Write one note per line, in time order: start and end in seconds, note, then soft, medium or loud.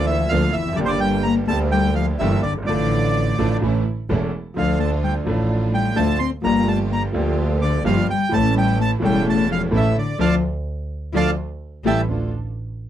0.00 0.28 D2 loud
0.00 0.29 D2 medium
0.00 0.28 D3 medium
0.00 0.28 F3 medium
0.00 0.28 A#3 medium
0.00 0.29 A#3 medium
0.00 0.29 D4 medium
0.00 0.28 F4 medium
0.00 0.30 F4 medium
0.06 0.28 E3 medium
0.06 0.32 E5 medium
0.29 0.52 D2 medium
0.29 0.52 D3 medium
0.29 0.52 F3 medium
0.29 0.52 A#3 medium
0.29 0.52 D4 medium
0.29 0.52 F4 medium
0.29 0.55 F5 loud
0.53 0.78 F1 medium
0.53 0.75 E3 medium
0.53 0.76 E5 medium
0.62 0.68 E2 medium
0.68 0.74 F2 medium
0.72 0.79 F#2 medium
0.72 0.79 D3 medium
0.72 1.45 D3 medium
0.72 0.79 D5 medium
0.77 1.46 G1 medium
0.77 1.46 G1 loud
0.77 1.46 G2 medium
0.77 1.45 G3 medium
0.77 1.46 A#3 medium
0.77 1.46 D4 medium
0.77 1.46 G4 medium
0.77 1.47 G4 medium
0.83 0.87 C3 medium
0.83 0.91 C5 medium
0.88 1.00 D3 medium
0.88 1.00 D5 loud
1.00 1.23 G3 medium
1.00 1.23 G5 loud
1.23 1.35 A#3 medium
1.23 1.34 A#5 loud
1.46 2.17 D2 medium
1.46 2.16 D3 medium
1.46 2.16 G3 medium
1.46 1.57 A3 medium
1.46 2.17 A#3 medium
1.46 1.59 A5 loud
1.50 2.17 D2 loud
1.50 2.17 D4 medium
1.50 2.17 G4 medium
1.70 1.93 G3 medium
1.70 1.94 G5 loud
1.94 2.05 F3 medium
1.94 2.06 F5 medium
2.19 2.40 G1 loud
2.19 2.40 G1 medium
2.19 2.40 G2 medium
2.19 2.40 D3 medium
2.19 2.41 E3 medium
2.19 2.40 G3 medium
2.19 2.40 A#3 medium
2.19 2.40 D4 medium
2.19 2.40 G4 medium
2.19 2.41 E5 medium
2.43 2.67 G1 medium
2.43 2.54 D3 medium
2.43 2.54 D5 medium
2.51 2.56 F#1 medium
2.58 2.62 G1 medium
2.63 2.68 G#1 medium
2.63 3.56 D3 medium
2.63 3.33 F3 medium
2.63 3.57 D5 medium
2.67 3.34 A1 loud
2.67 3.35 A1 medium
2.67 3.35 A2 medium
2.67 3.34 A3 medium
2.67 3.35 A3 medium
2.67 3.35 D4 medium
2.67 3.35 F4 medium
2.67 3.36 A4 medium
3.38 3.58 A1 medium
3.38 3.58 A2 medium
3.38 3.58 F3 medium
3.38 3.58 A3 medium
3.38 3.58 D4 medium
3.38 3.58 F4 medium
3.38 3.58 A4 medium
3.62 3.81 A1 loud
3.62 3.81 A1 medium
3.62 3.82 A2 medium
3.62 3.81 E3 medium
3.62 3.81 A3 medium
3.62 3.82 A3 medium
3.62 3.82 C#4 medium
3.62 3.82 E4 medium
3.62 3.81 A4 medium
4.09 4.29 E1 medium
4.09 4.29 E2 medium
4.09 4.29 E3 medium
4.09 4.29 A3 medium
4.09 4.29 C#4 medium
4.09 4.30 C#4 medium
4.09 4.29 E4 medium
4.09 4.29 A4 medium
4.54 5.23 D2 medium
4.54 5.24 D2 medium
4.54 5.24 D3 medium
4.54 5.22 F3 medium
4.54 4.78 F3 medium
4.54 5.23 A3 medium
4.54 5.24 A3 medium
4.54 5.24 D4 medium
4.54 5.24 F4 medium
4.54 4.79 F5 medium
4.59 5.25 A4 medium
4.78 4.89 A3 medium
4.78 4.91 A5 medium
5.03 5.13 G3 medium
5.03 5.14 G5 medium
5.25 5.94 A1 medium
5.25 5.94 A2 medium
5.25 5.93 F3 medium
5.25 5.93 A3 medium
5.25 5.94 A3 medium
5.25 5.94 D4 medium
5.25 5.94 F4 medium
5.25 5.95 A4 medium
5.71 5.94 G3 medium
5.71 5.98 G5 medium
5.96 6.17 D2 medium
5.96 6.16 D3 medium
5.96 6.16 F3 medium
5.96 6.18 A3 medium
5.96 6.17 A3 medium
5.96 6.17 D4 medium
5.96 6.17 F4 medium
5.96 6.17 A4 medium
5.96 6.19 A5 medium
6.19 6.31 C4 medium
6.19 6.30 C6 medium
6.42 7.11 G1 medium
6.42 7.11 G1 loud
6.42 7.11 G2 medium
6.42 7.10 F3 medium
6.42 6.65 A#3 medium
6.42 7.11 A#3 medium
6.42 7.11 D4 medium
6.42 7.11 F4 medium
6.42 7.11 G4 medium
6.42 6.68 A#5 medium
6.46 7.12 G4 medium
6.67 6.78 A3 medium
6.67 6.79 A5 medium
6.89 7.00 A#3 medium
6.89 7.03 A#5 medium
7.12 7.81 D2 medium
7.12 7.82 D2 loud
7.12 7.81 D3 medium
7.12 7.80 F3 medium
7.12 7.81 A#3 medium
7.12 7.82 A#3 medium
7.12 7.82 D4 medium
7.12 7.82 F4 medium
7.12 7.82 G4 medium
7.60 7.83 D3 medium
7.60 7.83 D5 medium
7.84 8.04 G1 medium
7.84 8.05 G1 loud
7.84 8.05 G2 medium
7.84 8.06 F3 medium
7.84 8.05 F3 medium
7.84 8.04 A#3 medium
7.84 8.05 A#3 medium
7.84 8.05 D4 medium
7.84 8.05 F4 medium
7.84 8.05 G4 medium
7.84 8.05 G4 loud
7.84 8.07 F5 loud
8.10 8.31 G3 medium
8.10 8.34 G5 loud
8.29 8.99 A1 medium
8.29 8.99 A1 loud
8.29 8.99 A2 medium
8.29 8.98 E3 medium
8.29 8.99 A3 medium
8.29 8.54 A3 loud
8.29 8.99 C#4 medium
8.29 8.99 E4 medium
8.29 8.99 A4 medium
8.33 8.55 A5 loud
8.56 8.78 G3 medium
8.56 8.78 G5 medium
8.79 8.89 A3 medium
8.79 8.91 A5 loud
9.00 9.69 E1 medium
9.00 9.69 E1 loud
9.00 9.69 E2 medium
9.00 9.68 E3 medium
9.00 9.25 G3 medium
9.00 9.69 A3 medium
9.00 9.70 C#4 medium
9.00 9.70 E4 medium
9.00 9.70 A4 medium
9.05 9.26 G5 loud
9.27 9.48 A3 medium
9.27 9.50 A5 loud
9.50 9.61 F3 medium
9.50 9.62 F5 medium
9.71 9.92 A1 medium
9.71 9.92 A1 loud
9.71 9.92 A2 medium
9.71 9.92 E3 medium
9.71 9.94 E3 medium
9.71 9.92 A3 medium
9.71 9.92 C#4 medium
9.71 9.93 C#4 medium
9.71 9.93 E4 medium
9.71 9.92 A4 medium
9.71 9.93 A4 loud
9.77 9.97 E5 medium
9.97 10.17 D3 medium
9.97 10.19 D5 medium
10.18 10.37 D2 loud
10.18 10.35 D3 medium
10.18 10.34 F3 loud
10.18 10.35 F3 medium
10.18 10.34 A3 medium
10.18 10.36 D4 medium
10.18 10.36 F4 medium
10.18 10.35 A4 medium
10.18 10.35 D5 medium
10.18 10.35 F5 medium
10.18 10.35 A5 medium
11.13 11.32 D2 medium
11.13 11.30 D3 medium
11.13 11.29 F3 medium
11.13 11.30 A3 medium
11.13 11.30 D4 medium
11.13 11.30 F4 loud
11.13 11.30 A4 medium
11.13 11.31 D5 loud
11.13 11.30 F5 medium
11.13 11.31 A5 medium
11.84 12.03 A1 medium
11.84 12.01 E3 medium
11.84 12.01 G3 medium
11.84 11.99 A3 medium
11.84 12.01 A3 medium
11.84 12.01 E4 medium
11.84 12.01 G4 medium
11.84 12.01 A4 medium
11.84 12.01 E5 medium
11.84 12.01 G5 medium
11.84 12.01 A5 medium
12.09 12.28 D2 medium
12.09 12.28 A3 soft
12.09 12.29 D4 soft
12.09 12.29 D4 medium
12.09 12.29 F4 medium
12.09 12.29 F4 soft
12.09 12.29 A4 medium